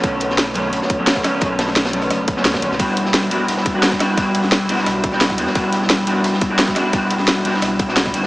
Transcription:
<<
  \new Staff \with { instrumentName = "Hollow-body jazz guitar" } { \time 4/4 \key e \dorian \tempo 4 = 174 <d fis a b cis'>4. <d fis a b cis'>4~ <d fis a b cis'>16 <d fis a b cis'>8. <d fis a b cis'>8 | <d fis a b cis'>4. <d fis a b cis'>4~ <d fis a b cis'>16 <d fis a b cis'>8. <d fis a b cis'>8 | <g b d' e' fis'>4. <g b d' e' fis'>4~ <g b d' e' fis'>16 <g b d' e' fis'>8. <g b d' e' fis'>8 | <g b d' e' fis'>4. <g b d' e' fis'>4~ <g b d' e' fis'>16 <g b d' e' fis'>8. <g b d' e' fis'>8 |
<g b d' e' fis'>4. <g b d' e' fis'>4~ <g b d' e' fis'>16 <g b d' e' fis'>8. <g b d' e' fis'>8 | <g b d' e' fis'>4. <g b d' e' fis'>4~ <g b d' e' fis'>16 <g b d' e' fis'>8. <g b d' e' fis'>16 r16 | }
  \new Staff \with { instrumentName = "Sub bass" } { \clef bass \time 4/4 \key e \dorian b,,2 b,,16 r4. r16 | b,,2 fis,,4 d,8 fis,,16 b,,16 | e,,2 e,,16 r4. r16 | e,,2 b,,4. e,16 r16 |
e,,2 e,,16 r4. r16 | e,,2 b,,4. g,,8 | }
  \new DrumStaff \with { instrumentName = "Drums" } \drummode { \time 4/4 <hh bd>8 hh16 sn16 <hh sn>8 hh8 hh16 sn16 <hh bd>8 <hh sn>16 <bd sn>16 <hh ss sn>8 | <hh bd>8 <hh sn>16 sn16 <hh sn>16 <hh sn>16 hh16 <hh ss>16 <hh ss>8 <hh bd>16 sn16 <hh sn>16 <hh bd ss sn>16 hh16 sn16 | <hh bd cymr>8 <hh cymr>16 sn16 <hh cymr sn>8 <hh cymr>8 <hh cymr>16 sn16 <hh bd cymr>8 <hh cymr sn>16 <bd sn>16 <hh cymr ss sn>8 | <hh bd cymr>8 <hh cymr>16 sn16 <hh cymr sn>8 <hh hho cymr>16 sn16 <hh cymr ss>8 <hh bd cymr>16 sn16 <hh cymr sn>16 <bd ss sn>16 <hh cymr>16 sn16 |
<hh bd cymr>8 <hh cymr>16 sn16 <hh cymr sn>8 <hh cymr>8 <hh cymr>16 sn16 <hh bd cymr>8 <hh cymr sn>16 <bd sn>16 <hh cymr ss sn>8 | <hh bd cymr>8 <hh cymr>16 sn16 <hh cymr sn>8 <hh hho cymr>16 sn16 <hh cymr ss>8 <hh bd cymr>16 sn16 <hh cymr sn>16 <bd ss sn>16 <hh cymr>16 sn16 | }
>>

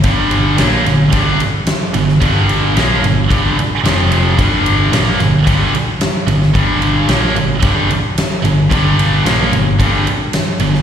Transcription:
<<
  \new Staff \with { instrumentName = "Distorted electric guitar" } { \clef bass \time 4/4 \key f \lydian \tempo 4 = 111 <g, d g>4 <bes, f bes>8 <g, d>8 <g, d g>8 r4 <g, d>8 | <g, d g>4 <bes, f bes>8 <g, d>8 <g, d g>8 r8 <f, c f>4 | <g, d g>4 <bes, f bes>8 <g, d>8 <g, d g>8 r4 <g, d>8 | <g, d g>4 <bes, f bes>8 <g, d>8 <g, d g>8 r4 <g, d>8 |
<g, d g>4 <bes, f bes>8 <g, d>8 <g, d g>8 r4 <g, d>8 | }
  \new Staff \with { instrumentName = "Distorted electric guitar" } { \clef bass \time 4/4 \key f \lydian <g, d g>4 <bes, f bes>8 <g, d>8 <g, d g>8 r4 <g, d>8 | <g, d g>4 <bes, f bes>8 <g, d>8 <g, d g>8 r8 <f, c f>4 | <g, d g>4 <bes, f bes>8 <g, d>8 <g, d g>8 r4 <g, d>8 | <g, d g>4 <bes, f bes>8 <g, d>8 <g, d g>8 r4 <g, d>8 |
<g, d g>4 <bes, f bes>8 <g, d>8 <g, d g>8 r4 <g, d>8 | }
  \new Staff \with { instrumentName = "Picked electric bass" } { \clef bass \time 4/4 \key f \lydian g,,4 bes,,8 g,,8 g,,8 r4 g,,8 | g,,4 bes,,8 g,,8 g,,8 r8 f,,4 | g,,4 bes,,8 g,,8 g,,8 r4 g,,8 | g,,4 bes,,8 g,,8 g,,8 r4 g,,8 |
g,,4 bes,,8 g,,8 g,,8 r4 g,,8 | }
  \new DrumStaff \with { instrumentName = "Drums" } \drummode { \time 4/4 <bd cymr>8 cymr8 <cymr sn>8 <cymr sn>8 <bd cymr>8 cymr8 <cymr sn>8 cymr16 sn16 | <bd cymr>8 cymr8 <cymr sn>8 cymr8 <bd cymr>8 cymr8 <cymr sn>8 cymr8 | <bd cymr>8 cymr8 <cymr sn>8 <cymr sn>8 <bd cymr>8 cymr8 <cymr sn>8 cymr16 sn16 | <bd cymr>8 cymr8 <cymr sn>8 cymr8 <bd cymr>8 cymr8 <cymr sn>8 cymr8 |
<bd cymr>8 cymr8 <cymr sn>8 cymr8 <bd cymr>8 cymr8 <cymr sn>8 cymr16 sn16 | }
>>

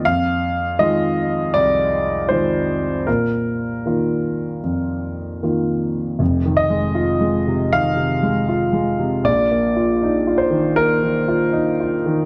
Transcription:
<<
  \new Staff \with { instrumentName = "Grand piano" } { \time 4/4 \key f \dorian \tempo 4 = 78 f''4 ees''4 d''4 c''4 | bes'2. r4 | r8 ees''4. f''2 | d''4. c''8 bes'2 | }
  \new Staff \with { instrumentName = "Grand piano" } { \clef bass \time 4/4 \key f \dorian f,4 <ees aes f'>4 c,4 <ees aes f'>4 | bes,4 <ees bes f'>4 f,4 <ees bes f'>4 | \tuplet 3/2 { <f,, f,>8 ees8 aes8 f'8 aes8 c8 ees8 c8 aes8 f'8 aes8 c8 } | \tuplet 3/2 { <bes,, bes,>8 bes8 f'8 ees'8 f'8 ees8 bes8 ees8 f'8 ees'8 f'8 ees8 } | }
>>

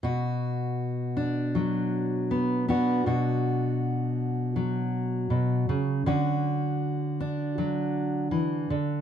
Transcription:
\new Staff \with { instrumentName = "Steel-string acoustic guitar" } { \clef bass \time 4/4 \key b \minor \tempo 4 = 80 << { fis'4. d'4. b8 <b d' fis'>8 | fis'1 | fis'4. d'2~ d'8 | } \\ { b,2 fis2 | b,2 fis4 b,8 cis8 | d2 fis4 e8 d8 | } >> }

